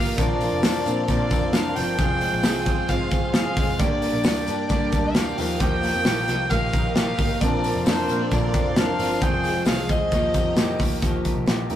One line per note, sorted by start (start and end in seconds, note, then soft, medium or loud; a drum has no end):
0.00 0.15 G#1 medium
0.00 0.18 F3 medium
0.00 0.18 A#3 soft
0.00 0.18 D#4 medium
0.00 0.18 F4 soft
0.00 0.18 G4 medium
0.00 0.23 G4 medium
0.00 1.95 A#4 medium
0.00 0.14 F5 loud
0.00 1.95 F5 medium
0.00 0.16 G5 medium
0.00 0.16 D#6 medium
0.17 0.47 A#1 loud
0.17 0.63 A#2 medium
0.17 0.63 D3 medium
0.17 0.61 F3 medium
0.17 0.62 C4 medium
0.17 0.62 D4 medium
0.17 0.63 A#4 medium
0.17 1.04 D5 medium
0.17 1.97 D5 medium
0.17 3.76 C6 medium
0.17 kick loud
0.17 hi-hat pedal medium
0.17 open hi-hat loud
0.17 tambourine soft
0.41 1.08 F3 medium
0.41 hi-hat pedal soft
0.41 open hi-hat medium
0.41 tambourine medium
0.53 0.65 F1 loud
0.62 0.83 F2 medium
0.62 0.85 F3 medium
0.62 0.86 C4 medium
0.62 0.85 D4 medium
0.62 0.84 A#4 medium
0.62 snare loud
0.62 hi-hat pedal medium
0.62 open hi-hat medium
0.62 tambourine loud
0.85 1.05 A#2 loud
0.85 1.07 F3 soft
0.85 1.08 C4 medium
0.85 1.08 D4 medium
0.85 1.08 A#4 medium
0.85 hi-hat pedal medium
0.85 open hi-hat medium
0.85 tambourine medium
1.07 1.53 A#2 medium
1.07 1.28 A#2 loud
1.07 1.54 D3 medium
1.07 1.52 F3 medium
1.07 1.53 C4 medium
1.07 1.53 D4 medium
1.07 1.54 A#4 medium
1.07 1.54 D5 loud
1.07 kick medium
1.07 hi-hat pedal medium
1.07 open hi-hat medium
1.07 tambourine medium
1.31 1.78 F2 loud
1.31 2.03 C4 medium
1.31 kick medium
1.31 hi-hat pedal medium
1.31 open hi-hat medium
1.31 tambourine medium
1.52 1.76 F3 medium
1.52 1.76 C4 medium
1.52 1.75 D4 medium
1.52 1.74 A#4 medium
1.52 1.77 F5 medium
1.52 snare loud
1.52 hi-hat pedal medium
1.52 open hi-hat medium
1.52 tambourine medium
1.75 1.96 G1 medium
1.75 1.97 F3 soft
1.75 1.97 C4 medium
1.75 1.99 D4 medium
1.75 1.98 A#4 medium
1.75 2.90 G5 loud
1.75 hi-hat pedal medium
1.75 open hi-hat medium
1.75 tambourine soft
1.98 2.28 F1 medium
1.98 2.42 F3 medium
1.98 2.43 C4 medium
1.98 2.44 F4 medium
1.98 3.78 G#4 medium
1.98 2.45 G#4 medium
1.98 3.78 C5 medium
1.98 3.78 F5 medium
1.98 kick loud
1.98 hi-hat pedal medium
1.98 open hi-hat medium
1.98 tambourine soft
2.21 2.88 G#3 medium
2.21 hi-hat pedal soft
2.21 open hi-hat medium
2.21 tambourine medium
2.33 2.43 A#1 medium
2.43 2.64 C2 medium
2.43 2.66 F3 medium
2.43 2.67 C4 medium
2.43 2.66 F4 medium
2.43 2.65 G#4 medium
2.43 snare medium
2.43 hi-hat pedal medium
2.43 open hi-hat medium
2.43 tambourine loud
2.66 2.86 G1 loud
2.66 2.88 C4 soft
2.66 2.88 F4 medium
2.66 2.89 G#4 medium
2.66 kick medium
2.66 hi-hat pedal medium
2.66 open hi-hat medium
2.66 tambourine medium
2.88 3.08 G#1 medium
2.88 3.32 F3 medium
2.88 3.56 G#3 medium
2.88 3.33 C4 medium
2.88 3.34 F4 medium
2.88 3.34 G#4 medium
2.88 3.33 F5 medium
2.88 kick medium
2.88 hi-hat pedal medium
2.88 open hi-hat medium
2.88 tambourine medium
3.11 3.50 G1 loud
3.11 3.84 C4 medium
3.11 kick medium
3.11 hi-hat pedal medium
3.11 open hi-hat medium
3.11 tambourine medium
3.33 3.56 F3 medium
3.33 3.57 C4 medium
3.33 3.56 F4 medium
3.33 3.55 G#4 medium
3.33 3.81 F5 loud
3.33 snare loud
3.33 hi-hat pedal medium
3.33 open hi-hat medium
3.33 tambourine loud
3.56 3.76 F1 loud
3.56 3.79 G#3 medium
3.56 3.80 C4 soft
3.56 3.80 F4 soft
3.56 3.79 G#4 medium
3.56 kick loud
3.56 hi-hat pedal medium
3.56 open hi-hat medium
3.79 4.08 G1 medium
3.79 4.24 G2 medium
3.79 4.25 D3 medium
3.79 4.24 G3 medium
3.79 4.25 A#3 medium
3.79 4.25 D4 medium
3.79 4.26 G4 medium
3.79 5.36 A#4 medium
3.79 4.68 D5 loud
3.79 5.36 D5 medium
3.79 7.37 G5 medium
3.79 5.36 D6 medium
3.79 kick loud
3.79 hi-hat pedal medium
3.79 open hi-hat loud
3.79 tambourine soft
4.02 4.70 A#3 medium
4.02 hi-hat pedal medium
4.02 open hi-hat medium
4.02 tambourine medium
4.13 4.23 A#1 medium
4.24 4.44 D2 medium
4.24 4.70 G3 medium
4.24 4.71 A#3 medium
4.24 4.70 D4 medium
4.24 4.71 G4 medium
4.24 snare loud
4.24 hi-hat pedal medium
4.24 open hi-hat medium
4.24 tambourine loud
4.47 4.67 G2 medium
4.47 4.91 D4 medium
4.47 hi-hat pedal medium
4.47 open hi-hat medium
4.47 tambourine medium
4.69 4.89 G2 loud
4.69 5.15 G2 medium
4.69 5.16 D3 medium
4.69 5.15 G3 medium
4.69 5.16 A#3 medium
4.69 5.16 D4 medium
4.69 5.17 G4 medium
4.69 5.16 D5 medium
4.69 kick medium
4.69 hi-hat pedal medium
4.69 open hi-hat medium
4.69 tambourine medium
4.92 5.31 D2 medium
4.92 5.42 D4 medium
4.92 kick medium
4.92 hi-hat pedal medium
4.92 open hi-hat medium
4.92 tambourine medium
5.14 5.38 G3 medium
5.14 5.38 A#3 medium
5.14 5.39 D4 medium
5.14 5.36 G4 medium
5.14 5.61 F5 medium
5.14 snare loud
5.14 hi-hat pedal medium
5.14 open hi-hat medium
5.14 tambourine medium
5.37 5.57 D#2 loud
5.37 5.60 F3 medium
5.37 5.60 A#3 soft
5.37 5.60 D#4 medium
5.37 5.60 G4 medium
5.37 9.18 A#4 medium
5.37 10.98 F5 medium
5.37 7.39 D#6 medium
5.37 hi-hat pedal medium
5.37 open hi-hat medium
5.37 tambourine soft
5.60 5.89 D#2 medium
5.60 6.06 D#3 medium
5.60 6.05 F3 medium
5.60 6.06 A#3 medium
5.60 6.06 D#4 medium
5.60 6.06 G4 medium
5.60 6.52 G5 loud
5.60 kick loud
5.60 hi-hat pedal medium
5.60 open hi-hat loud
5.83 6.51 A#3 medium
5.83 hi-hat pedal medium
5.83 open hi-hat medium
5.83 tambourine medium
5.95 6.04 F2 medium
6.05 6.25 A#1 medium
6.05 6.51 F3 medium
6.05 6.51 A#3 medium
6.05 6.51 D#4 medium
6.05 6.52 G4 medium
6.05 snare loud
6.05 hi-hat pedal medium
6.05 open hi-hat medium
6.05 tambourine loud
6.28 6.48 C2 loud
6.28 6.73 D#4 medium
6.28 snare soft
6.28 hi-hat pedal medium
6.28 open hi-hat medium
6.28 tambourine medium
6.50 6.70 A#1 medium
6.50 6.96 D#3 medium
6.50 6.95 F3 medium
6.50 6.96 A#3 medium
6.50 6.96 D#4 medium
6.50 6.97 G4 medium
6.50 6.95 F5 loud
6.50 kick medium
6.50 hi-hat pedal medium
6.50 open hi-hat medium
6.50 tambourine medium
6.73 7.12 A#1 medium
6.73 7.41 D#4 medium
6.73 kick medium
6.73 hi-hat pedal medium
6.73 open hi-hat medium
6.73 tambourine medium
6.95 7.18 F3 medium
6.95 7.19 A#3 medium
6.95 7.18 D#4 medium
6.95 7.17 G4 medium
6.95 7.42 F5 medium
6.95 snare medium
6.95 hi-hat pedal medium
6.95 open hi-hat medium
6.95 tambourine medium
7.18 7.38 G#1 medium
7.18 7.41 A#3 soft
7.18 7.42 D#4 soft
7.18 7.41 G4 medium
7.18 kick medium
7.18 hi-hat pedal medium
7.18 open hi-hat medium
7.18 tambourine soft
7.41 7.70 A#1 medium
7.41 7.86 A#2 medium
7.41 7.86 D3 medium
7.41 7.85 F3 medium
7.41 7.86 C4 medium
7.41 7.86 D4 medium
7.41 7.86 A#4 medium
7.41 7.85 D5 medium
7.41 9.20 D5 medium
7.41 10.09 C6 medium
7.41 kick loud
7.41 hi-hat pedal medium
7.41 open hi-hat loud
7.64 8.31 F3 medium
7.64 hi-hat pedal medium
7.64 open hi-hat medium
7.64 tambourine medium
7.75 7.84 F1 medium
7.85 8.05 F2 medium
7.85 8.08 F3 medium
7.85 8.09 C4 medium
7.85 8.08 D4 medium
7.85 8.07 A#4 medium
7.85 8.28 C5 medium
7.85 snare loud
7.85 hi-hat pedal medium
7.85 open hi-hat medium
7.85 tambourine loud
8.08 8.28 A#2 loud
8.08 8.31 F3 soft
8.08 8.20 A#3 medium
8.08 8.31 C4 soft
8.08 8.31 D4 soft
8.08 8.31 A#4 medium
8.08 hi-hat pedal medium
8.08 open hi-hat medium
8.08 tambourine medium
8.20 8.53 C4 medium
8.31 8.76 A#2 medium
8.31 8.51 A#2 loud
8.31 8.77 D3 medium
8.31 8.76 F3 medium
8.31 8.76 C4 medium
8.31 8.77 D4 medium
8.31 8.77 A#4 medium
8.31 8.78 D5 medium
8.31 kick medium
8.31 hi-hat pedal medium
8.31 open hi-hat medium
8.31 tambourine medium
8.54 8.93 F2 loud
8.54 9.26 C4 medium
8.54 kick medium
8.54 hi-hat pedal medium
8.54 open hi-hat medium
8.54 tambourine medium
8.76 8.99 F3 medium
8.76 8.99 C4 medium
8.76 8.98 D4 medium
8.76 8.97 A#4 medium
8.76 9.23 F5 loud
8.76 snare loud
8.76 hi-hat pedal medium
8.76 open hi-hat medium
8.76 tambourine loud
8.98 9.18 G1 medium
8.98 9.20 F3 soft
8.98 9.21 C4 soft
8.98 9.22 D4 soft
8.98 9.21 A#4 medium
8.98 hi-hat pedal medium
8.98 open hi-hat medium
8.98 tambourine soft
9.21 9.60 F1 medium
9.21 9.66 F3 medium
9.21 9.66 C4 medium
9.21 9.68 F4 medium
9.21 10.11 G#4 medium
9.21 9.68 G#4 medium
9.21 10.11 C5 medium
9.21 9.66 G5 loud
9.21 kick loud
9.21 hi-hat pedal medium
9.21 open hi-hat loud
9.21 tambourine soft
9.44 10.17 G#3 medium
9.44 hi-hat pedal medium
9.44 open hi-hat medium
9.44 tambourine medium
9.65 9.86 C2 loud
9.65 10.12 C4 medium
9.65 10.12 F4 medium
9.65 10.13 G#4 medium
9.65 9.91 F5 medium
9.65 snare loud
9.65 hi-hat pedal medium
9.65 open hi-hat medium
9.65 tambourine loud
9.89 10.09 D2 loud
9.89 10.17 C4 medium
9.89 10.80 D#5 medium
9.89 kick medium
9.89 hi-hat pedal medium
9.89 open hi-hat medium
9.89 tambourine medium
10.11 10.32 D#2 loud
10.11 10.59 D#3 medium
10.11 10.56 F3 medium
10.11 10.57 A#3 medium
10.11 10.58 D#4 medium
10.11 11.02 G4 medium
10.11 10.59 G4 medium
10.11 11.01 D#5 medium
10.11 11.02 A#5 medium
10.11 kick medium
10.11 hi-hat pedal medium
10.11 open hi-hat medium
10.11 tambourine medium
10.34 10.73 F2 loud
10.34 11.25 D#4 medium
10.34 kick medium
10.34 hi-hat pedal medium
10.34 open hi-hat medium
10.34 tambourine medium
10.56 10.79 F3 medium
10.56 10.80 A#3 medium
10.56 10.79 D#4 medium
10.56 10.78 G4 medium
10.56 snare loud
10.56 hi-hat pedal medium
10.56 open hi-hat medium
10.56 tambourine medium
10.79 10.99 D2 medium
10.79 11.01 A#3 medium
10.79 11.02 D#4 medium
10.79 11.02 G4 medium
10.79 kick medium
10.79 hi-hat pedal medium
10.79 open hi-hat medium
10.79 tambourine soft
11.01 11.31 D#2 medium
11.01 11.49 D#3 medium
11.01 11.45 F3 medium
11.01 11.47 A#3 medium
11.01 11.48 D#4 medium
11.01 11.49 G4 medium
11.01 kick loud
11.01 closed hi-hat loud
11.25 11.70 D#4 medium
11.25 kick medium
11.25 closed hi-hat medium
11.36 11.46 C2 medium
11.46 11.67 A#1 medium
11.46 11.70 F3 medium
11.46 11.70 A#3 medium
11.46 11.70 D#4 medium
11.46 11.69 G4 medium
11.46 snare loud
11.46 closed hi-hat medium
11.70 11.76 D#2 loud
11.70 11.76 A#3 soft
11.70 11.76 D#4 medium
11.70 11.76 G4 medium
11.70 closed hi-hat medium